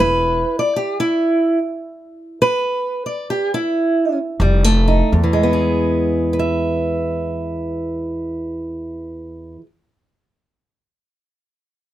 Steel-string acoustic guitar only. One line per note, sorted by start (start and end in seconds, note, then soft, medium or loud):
0.00 0.50 E2 medium
0.00 0.62 E4 medium
0.00 0.57 B4 loud
0.59 0.78 D5 medium
0.76 0.97 G4 medium
1.00 1.58 E4 medium
2.42 3.04 B4 loud
3.06 3.27 D5 medium
3.30 3.50 G4 medium
3.54 4.18 E4 loud
4.41 5.07 F2 medium
4.41 4.64 G3 medium
4.64 5.13 A3 medium
4.88 5.10 D#4 medium
5.13 9.56 E2 medium
5.24 9.61 E3 medium
5.33 9.66 G#3 medium
5.43 6.33 B3 medium
5.53 6.39 G#4 medium
6.33 9.56 B4 medium
6.39 9.59 E5 medium